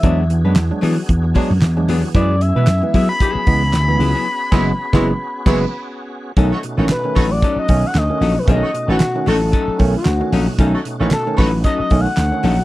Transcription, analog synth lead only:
X:1
M:4/4
L:1/16
Q:"Swing 16ths" 1/4=114
K:Bmix
V:1 name="Analog synth lead"
e2 z12 z2 | =d2 e4 e b8- b- | b12 z4 | z4 B3 =d2 ^d2 f d3 B |
d3 F3 A4- A F4 z | z4 A2 B2 (3d2 d2 f2- f4 |]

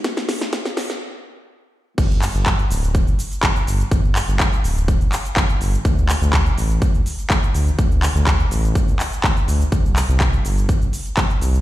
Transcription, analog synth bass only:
X:1
M:4/4
L:1/16
Q:1/4=124
K:Dm
V:1 name="Analog synth bass" clef=bass
z16 | G,,,2 z G,,,2 z D,,,3 G,,, z2 G,,, z G,,, z | G,,,2 z G,,,2 z D,,,3 G,,, z2 G,,, z G,,, z | D,,2 z D,,2 z A,,,3 D,, z2 D,, z D,, z |
D,,2 z D,,2 z A,,,3 D,, z2 D,, z D,, z | C,,2 z C,,2 z G,,,3 C,, z2 C,, z C,, z |]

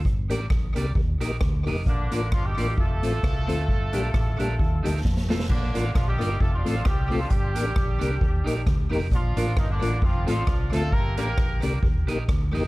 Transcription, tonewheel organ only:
X:1
M:4/4
L:1/16
Q:"Swing" 1/4=132
K:Bb
V:1 name="Tonewheel organ"
z2 [B,DGB] z3 [B,DGB] z [GB]2 [B,EGB] z3 [B,EGB] z | z2 [B,DFB] z3 [B,DFB] z [FA]2 [A,CFA] z3 [A,CFA] z | z2 [G,B,DG] z3 [G,B,DG] z [EG]2 [G,B,EG] z3 [A,CFA] z | z2 [B,DFB] z3 [B,DFB] z [FA]2 [A,CFA] z3 [A,CFA] z |
z2 [B,DGB] z3 [B,DGB] z [GB]2 [B,EGB] z3 [B,EGB] z | z2 [B,DFB] z3 [B,DFB] z [FA]2 [A,CFA] z3 [A,CFA] z | z2 [B,DGB] z3 [B,DGB] z [GB]2 [B,EGB] z3 [B,EGB] z |]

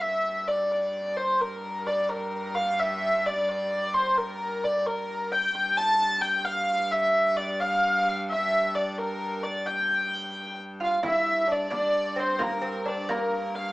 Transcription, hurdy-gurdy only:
X:1
M:6/8
L:1/8
Q:3/8=87
K:Gdor
V:1 name="Hurdy-gurdy"
e2 d d2 c | B2 d B2 f | e2 d d2 c | B2 d B2 g |
g a2 g f2 | e2 d f2 f | e2 d B2 d | g4 z f |
e2 d d2 c | B2 d B2 f |]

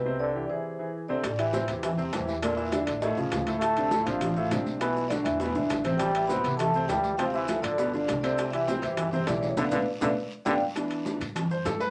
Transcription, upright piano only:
X:1
M:4/4
L:1/8
Q:1/4=202
K:Ephr
V:1 name="Upright piano"
[C,Cc]2 [E,EG] [E,E_A]2 [E,E^G]2 [^B,,^B,^B] | [K:Am] z [E,EG] [C,Cc] [E,EG]2 [C,Cc] [E,EG]2 | [_B,,_B,_B]2 [D,DE]2 [A,,A,A] [^C,^C^E]2 [A,,A,A]- | [A,,A,A] [C,CD] [A,,A,A] [C,CD]2 [A,,A,A] [C,CD]2 |
[B,,B,B]2 [D,D^F]2 [B,,B,B] [D,DE]2 [C,Cc]- | [C,Cc] [E,EG] [C,Cc] [E,EG]2 [C,Cc] [E,EG]2 | [C,Cc]2 [F,FA]2 [B,,B,B] [D,DF]2 [C,Cc]- | [C,Cc] [E,EG] [C,Cc] [E,EG]2 [C,Cc] [E,EG]2 |
[A,B,D] [A,B,D] z [A,B,D] z2 [G,B,D] z | [K:Gmix] [E,B,D]3 z2 c A B |]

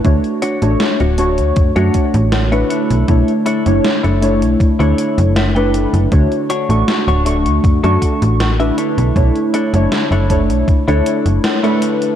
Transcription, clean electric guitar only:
X:1
M:4/4
L:1/16
Q:1/4=79
K:Bm
V:1 name="Clean electric guitar"
z2 [DFc] z2 [DFc] z3 [DFc]2 z2 [DFc] [DEAc]2- | [DEAc] z [DEAc] z2 [DEAc] z3 [DEAc]2 z e [DEABg]3 | z2 [DFc] z2 [DFc] z3 [DFA]2 z2 [DFe] [DEAc]2- | [DEAc] z [DEAc] z2 [DEAc] z3 [DEAc]2 z2 [DEAc]3 |]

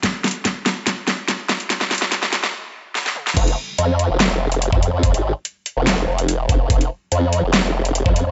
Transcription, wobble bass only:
X:1
M:4/4
L:1/16
Q:1/4=144
K:Cphr
V:1 name="Wobble bass" clef=bass
z16 | z16 | [K:Fm] F,,,2 z2 F,,3 F,,,2 F,,,4 F,,2 F,,- | F,, A,,,2 z4 F,,,2 F,,, F,,,4 F,,,2 |
F,,,2 z2 F,,3 F,,,2 F,,,4 F,,2 F,, |]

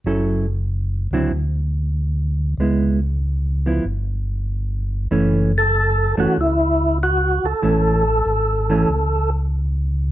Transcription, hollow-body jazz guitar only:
X:1
M:4/4
L:1/8
Q:"Swing" 1/4=95
K:F#m
V:1 name="Hollow-body jazz guitar"
[F,CEA] z2 [D,F,^B,E] z4 | [G,B,E] z2 [^E,B,=E] z4 | [E,A,C] z2 [E,A,C] z4 | [E,A,C] z2 [E,A,C] z4 |]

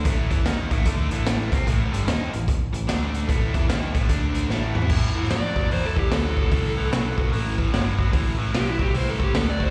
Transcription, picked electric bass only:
X:1
M:4/4
L:1/8
Q:"Swing" 1/4=148
K:Am
V:1 name="Picked electric bass" clef=bass
A,,, E,, ^D,, A,,, =D,, A,,,2 C,, | A,,, G,,, ^D,, A,,, z A,,, =D,,2 | A,,, E,, ^D,, A,,, =D,,2 A,,, E,, | A,,2 F,,2 E,,2 D,,2 |
C,,2 B,,,2 A,,,2 G,,,2 | A,,,2 B,,,2 C,, z D,,2 |]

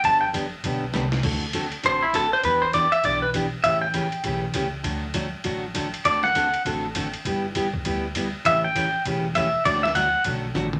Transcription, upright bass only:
X:1
M:4/4
L:1/8
Q:"Swing" 1/4=200
K:Dmix
V:1 name="Upright bass" clef=bass
G,,,4 B,,,2 C,,2 | D,,4 A,,,4 | E,,4 B,,,4 | A,,,4 B,,,2 ^C,,2 |
D,,4 A,,,4 | D,,4 A,,,4 | G,,,4 D,,4 | A,,,4 E,,,4 |
D,,4 B,,,2 A,,,2 |]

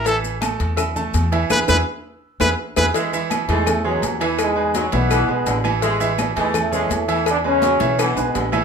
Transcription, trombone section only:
X:1
M:4/4
L:1/8
Q:1/4=166
K:A
V:1 name="Trombone section" clef=bass
z8 | z8 | z3 [G,,G,] [A,,A,] [F,,F,]2 z | [G,,G,]2 [G,,G,] [B,,B,]4 z |
z3 [G,,G,] [A,,A,]2 [A,,A,]2 | [D,D] [C,C]3 [B,,B,]3 z |]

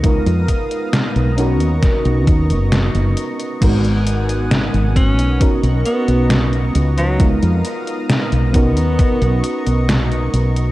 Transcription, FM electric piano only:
X:1
M:4/4
L:1/8
Q:1/4=67
K:Blyd
V:1 name="FM electric piano"
[G,B,DEA]3 [B,CDFA]4- [B,CDFA] | [G,B,DFA]4 [B,CDFA]4 | [G,B,DEA]3 [B,CDFA]4- [B,CDFA] |]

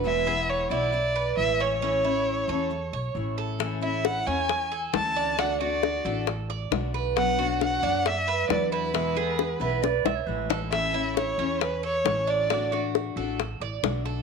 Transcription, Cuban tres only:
X:1
M:4/4
L:1/8
Q:1/4=135
K:A
V:1 name="Cuban tres"
B G2 E2 B2 C | C E2 A2 c2 A- | A E2 C2 A2 D | D F2 A2 d2 B- |
B F2 D2 B2 E | E G2 B2 e2 A- | A E2 C2 A2 D | D F2 A2 d2 A |]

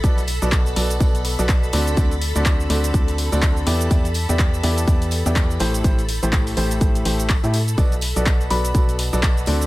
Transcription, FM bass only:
X:1
M:4/4
L:1/16
Q:"Swing 16ths" 1/4=124
K:Bphr
V:1 name="FM bass" clef=bass
B,,,3 B,,,3 B,,,2 B,,,3 B,,,3 D,,2 | D,,3 D,,3 D,,2 D,,3 D,,3 E,,2 | E,,3 E,,3 E,,2 E,,3 E,,3 A,,,2 | A,,,3 A,,,3 A,,,2 A,,,2 A,,,3 A,,3 |
B,,,3 B,,,3 B,,,2 B,,,3 B,,,3 D,,2 |]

